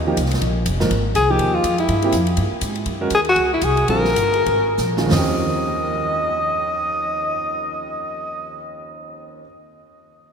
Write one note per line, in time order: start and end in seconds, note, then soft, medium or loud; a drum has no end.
0.00 0.17 D#2 medium
0.07 0.16 F3 medium
0.07 0.16 A#3 medium
0.07 0.16 D#4 medium
0.07 0.17 G4 medium
0.17 0.41 C2 medium
0.17 kick soft
0.17 hi-hat pedal medium
0.17 ride medium
0.26 snare soft
0.31 snare soft
0.31 ride medium
0.41 0.65 A#1 medium
0.41 kick soft
0.41 ride medium
0.66 0.90 F1 medium
0.66 kick soft
0.66 hi-hat pedal medium
0.66 ride medium
0.80 0.89 G#2 medium
0.80 0.89 F3 medium
0.80 0.90 A#3 medium
0.80 0.89 D#4 medium
0.80 0.90 A#4 medium
0.80 snare medium
0.91 1.14 G#1 medium
0.91 kick soft
0.91 ride medium
1.15 1.39 C2 medium
1.15 1.32 G#4 loud
1.15 kick soft
1.15 hi-hat pedal medium
1.15 ride medium
1.30 1.62 F3 medium
1.30 1.63 A#3 medium
1.30 1.62 D#4 medium
1.30 1.63 G4 medium
1.30 1.56 G4 medium
1.39 1.63 D#2 medium
1.39 kick soft
1.39 ride medium
1.55 1.79 F4 medium
1.64 1.88 F2 medium
1.64 kick soft
1.64 hi-hat pedal medium
1.64 ride medium
1.78 2.25 E4 medium
1.78 ride soft
1.88 2.12 G2 medium
1.88 kick soft
1.88 ride medium
2.02 2.13 A#3 medium
2.02 2.13 C4 medium
2.02 2.13 E4 medium
2.02 2.13 G4 medium
2.02 ride soft
2.12 2.37 F2 medium
2.12 kick soft
2.12 hi-hat pedal medium
2.12 ride medium
2.27 ride soft
2.37 2.51 G2 medium
2.37 kick soft
2.37 ride medium
2.52 muted upright bass stroke soft
2.61 2.86 G#2 medium
2.61 kick soft
2.61 hi-hat pedal medium
2.61 ride medium
2.75 ride soft
2.86 3.10 F#2 medium
2.86 kick soft
2.86 ride medium
3.01 3.10 G#3 medium
3.01 3.10 C#4 medium
3.01 3.10 F#4 medium
3.01 3.10 A#4 medium
3.10 3.35 D#2 medium
3.10 kick soft
3.10 hi-hat pedal medium
3.10 ride medium
3.15 3.20 G#4 medium
3.25 ride soft
3.29 3.51 F#4 medium
3.36 3.61 C#2 medium
3.36 kick soft
3.36 ride medium
3.54 3.65 E4 medium
3.62 3.88 C2 medium
3.62 3.89 G#4 medium
3.62 kick soft
3.62 hi-hat pedal medium
3.62 ride medium
3.77 ride soft
3.88 4.16 A#1 medium
3.88 4.04 D3 medium
3.88 4.04 G3 medium
3.88 4.04 C4 medium
3.88 4.04 F4 medium
3.88 4.74 A#4 medium
3.88 kick soft
3.88 ride medium
4.05 snare soft
4.16 4.45 G1 medium
4.16 kick soft
4.16 hi-hat pedal medium
4.16 ride medium
4.34 ride soft
4.46 4.77 G#1 medium
4.46 kick soft
4.46 ride medium
4.78 5.10 A#1 medium
4.78 snare soft
4.78 hi-hat pedal medium
4.97 5.07 D#3 medium
4.97 5.10 G#3 soft
4.97 5.10 C#4 soft
4.97 5.10 F4 medium
4.97 snare medium
5.06 9.39 D#2 medium
5.06 9.40 D#3 medium
5.11 9.38 D#2 medium
5.11 9.42 F3 medium
5.11 9.43 C4 medium
5.11 8.69 D#5 medium
5.11 snare medium
5.11 floor tom medium
5.11 open hi-hat medium
5.15 9.44 C#4 medium
5.15 9.45 G4 medium